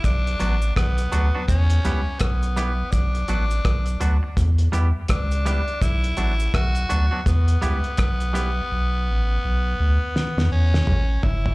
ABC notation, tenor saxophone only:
X:1
M:4/4
L:1/8
Q:"Swing 16ths" 1/4=83
K:Bm
V:1 name="Tenor saxophone"
D2 B,2 C2 B,2 | D4 z2 D2 | E2 F2 B,4- | B,4- B, C2 E |]